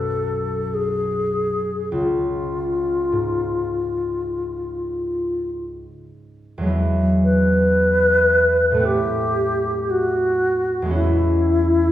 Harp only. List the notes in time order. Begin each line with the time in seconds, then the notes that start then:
Already playing: B1 F#2
1.92 C#2
3.12 G#2
6.58 E2 F#3
6.63 G#3 B3
6.69 E4
8.71 A2 A3
8.77 B3 C4
8.82 E4
10.82 E2 G#3
10.88 B3 C#4
10.93 E4